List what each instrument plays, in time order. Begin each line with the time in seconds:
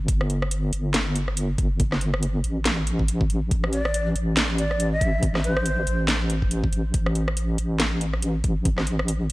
0.08 wobble bass G1, kick, closed hi-hat
0.21 cross-stick
0.30 closed hi-hat
0.42 cross-stick
0.51 closed hi-hat
0.72 wobble bass G1, closed hi-hat
0.94 snare, closed hi-hat
1.16 closed hi-hat
1.28 cross-stick
1.37 closed hi-hat
1.58 wobble bass G1, kick, closed hi-hat
1.80 kick, closed hi-hat
1.92 cross-stick, snare
2.01 closed hi-hat
2.14 cross-stick
2.23 closed hi-hat
2.44 wobble bass A1, closed hi-hat
2.65 snare, closed hi-hat
2.87 closed hi-hat
2.99 kick
3.08 closed hi-hat
3.21 kick
3.30 wobble bass A1, closed hi-hat
3.51 wobble bass A1, kick, closed hi-hat
3.64 cross-stick
3.73 ney D5, closed hi-hat
3.85 cross-stick
3.94 closed hi-hat
4.15 wobble bass A1, closed hi-hat
4.37 snare, closed hi-hat
4.58 ney D5, closed hi-hat
4.71 cross-stick
4.80 closed hi-hat
4.92 ney E5
5.01 wobble bass A1, kick, closed hi-hat
5.23 kick, closed hi-hat
5.35 cross-stick, snare
5.44 ney C5, closed hi-hat
5.57 cross-stick
5.66 closed hi-hat
5.87 wobble bass A1, closed hi-hat
6.08 snare, closed hi-hat
6.30 closed hi-hat
6.42 kick
6.51 closed hi-hat
6.64 kick
6.73 wobble bass A1, closed hi-hat
6.94 wobble bass A1, kick, closed hi-hat
7.06 cross-stick
7.15 closed hi-hat
7.28 cross-stick
7.37 closed hi-hat
7.58 wobble bass A1, closed hi-hat
7.80 snare, closed hi-hat
8.01 closed hi-hat
8.13 cross-stick
8.22 closed hi-hat
8.44 wobble bass A1, kick, closed hi-hat
8.65 kick, closed hi-hat
8.78 cross-stick, snare
8.87 closed hi-hat
8.99 cross-stick
9.08 closed hi-hat